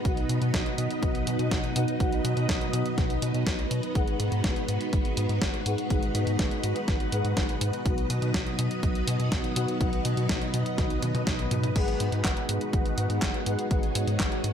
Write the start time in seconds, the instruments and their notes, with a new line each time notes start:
Already playing: string machine B3 D#4 B4
0.05 analog synth bass B1, analog polysynth B2 D#4 F#4 B4 F#5, string machine F#3 D#5, kick, closed hi-hat
0.17 closed hi-hat
0.29 analog synth bass B2, closed hi-hat
0.41 analog synth bass B2, closed hi-hat
0.54 analog synth bass B1, kick, snare, closed hi-hat
0.66 closed hi-hat
0.78 analog synth bass B2, closed hi-hat
0.91 closed hi-hat
1.03 analog synth bass B1, kick, closed hi-hat
1.15 closed hi-hat
1.27 analog synth bass B2, closed hi-hat
1.39 analog synth bass B2, closed hi-hat
1.51 analog synth bass B1, kick, snare, closed hi-hat
1.64 closed hi-hat
1.76 analog polysynth B2 D#4 F#4 B4 F#5, analog synth bass B2, closed hi-hat
1.88 closed hi-hat
2.00 analog synth bass B1, analog polysynth B2 D#4 F#4 B4 F#5, kick, closed hi-hat
2.12 closed hi-hat
2.24 analog synth bass B2, closed hi-hat
2.37 analog synth bass B2, closed hi-hat
2.49 analog synth bass B1, kick, snare, closed hi-hat
2.61 closed hi-hat
2.73 analog synth bass B2, closed hi-hat
2.86 closed hi-hat
2.98 analog synth bass B1, kick, snare, closed hi-hat
3.10 closed hi-hat
3.22 analog synth bass B2, closed hi-hat
3.34 analog synth bass B2, closed hi-hat
3.47 analog synth bass B1, kick, snare, closed hi-hat
3.59 closed hi-hat
3.71 analog synth bass B2, closed hi-hat
3.83 closed hi-hat
3.95 analog synth bass G#1, analog polysynth G#3 D#4 G#4 B4 F#5, string machine G#3 F#4 B4, kick, closed hi-hat
4.08 closed hi-hat
4.20 analog synth bass G#2, closed hi-hat
4.32 analog synth bass G#2, closed hi-hat
4.44 analog synth bass G#1, kick, snare, closed hi-hat
4.56 closed hi-hat
4.68 analog synth bass G#2, closed hi-hat
4.81 closed hi-hat
4.93 analog synth bass G#1, kick, closed hi-hat
5.05 closed hi-hat
5.17 analog synth bass G#2, closed hi-hat
5.29 analog synth bass G#2, closed hi-hat
5.42 analog synth bass G#1, kick, snare, closed hi-hat
5.54 closed hi-hat
5.66 analog synth bass G#2, analog polysynth G#3 D#4 G#4 B4 F#5, closed hi-hat
5.78 closed hi-hat
5.90 analog synth bass G#1, analog polysynth G#3 D#4 G#4 B4 F#5, kick, closed hi-hat
6.03 closed hi-hat
6.15 analog synth bass G#2, closed hi-hat
6.27 analog synth bass G#2, closed hi-hat
6.39 analog synth bass G#1, kick, snare, closed hi-hat
6.51 closed hi-hat
6.63 analog synth bass G#2, closed hi-hat
6.76 closed hi-hat
6.88 analog synth bass G#1, kick, snare, closed hi-hat
7.00 closed hi-hat
7.12 analog synth bass G#2, analog polysynth G#3 D#4 G#4 B4 F#5, closed hi-hat
7.24 analog synth bass G#2, closed hi-hat
7.37 analog synth bass G#1, kick, snare, closed hi-hat
7.49 closed hi-hat
7.61 analog synth bass G#2, closed hi-hat
7.73 closed hi-hat
7.86 analog synth bass B1, analog polysynth B2 D#4 F#4 B4 F#5, string machine F#3 B3 D#4 D#5, kick, closed hi-hat
7.98 closed hi-hat
8.10 analog synth bass B2, closed hi-hat
8.22 analog synth bass B2, closed hi-hat
8.34 analog synth bass B1, kick, snare, closed hi-hat
8.47 closed hi-hat
8.59 analog synth bass B2, closed hi-hat
8.71 closed hi-hat
8.83 analog synth bass B1, kick, closed hi-hat
8.95 closed hi-hat
9.07 analog synth bass B2, closed hi-hat
9.20 analog synth bass B2, closed hi-hat
9.32 analog synth bass B1, kick, snare, closed hi-hat
9.44 closed hi-hat
9.56 analog polysynth B2 D#4 F#4 B4 F#5, analog synth bass B2, closed hi-hat
9.68 closed hi-hat
9.81 analog synth bass B1, analog polysynth B2 D#4 F#4 B4 F#5, kick, closed hi-hat
9.93 closed hi-hat
10.05 analog synth bass B2, closed hi-hat
10.17 analog synth bass B2, closed hi-hat
10.29 analog synth bass B1, kick, snare, closed hi-hat
10.42 closed hi-hat
10.54 analog synth bass B2, closed hi-hat
10.66 closed hi-hat
10.78 analog synth bass B1, kick, snare, closed hi-hat, high tom
10.90 closed hi-hat, high tom
11.02 analog synth bass B2, closed hi-hat, high tom
11.15 analog synth bass B2, closed hi-hat, mid tom
11.27 analog synth bass B1, kick, snare, closed hi-hat, mid tom
11.39 closed hi-hat
11.51 analog synth bass B2, closed hi-hat, mid tom
11.64 closed hi-hat, mid tom
11.76 analog synth bass G#1, string machine G#3 B3 F#4, analog polysynth G#3 D#4 G#4 B4 F#5, kick, closed hi-hat, crash
11.88 closed hi-hat
12.00 analog synth bass G#2, closed hi-hat
12.12 analog synth bass G#2, closed hi-hat
12.24 analog synth bass G#1, kick, snare, clap, closed hi-hat
12.37 closed hi-hat
12.49 analog synth bass G#2, closed hi-hat
12.61 closed hi-hat
12.73 analog synth bass G#1, kick, closed hi-hat
12.86 closed hi-hat
12.97 analog synth bass G#2, closed hi-hat
13.10 analog synth bass G#2, closed hi-hat
13.22 analog synth bass G#1, kick, snare, clap, closed hi-hat
13.34 closed hi-hat
13.46 analog synth bass G#2, analog polysynth G#3 D#4 G#4 B4 F#5, closed hi-hat
13.59 closed hi-hat
13.71 analog synth bass G#1, analog polysynth G#3 D#4 G#4 B4 F#5, string machine C#5, kick, closed hi-hat
13.83 closed hi-hat
13.95 analog synth bass G#2, closed hi-hat
14.07 analog synth bass G#2, closed hi-hat
14.20 analog synth bass G#1, kick, snare, clap, closed hi-hat
14.32 closed hi-hat
14.44 analog synth bass G#2, closed hi-hat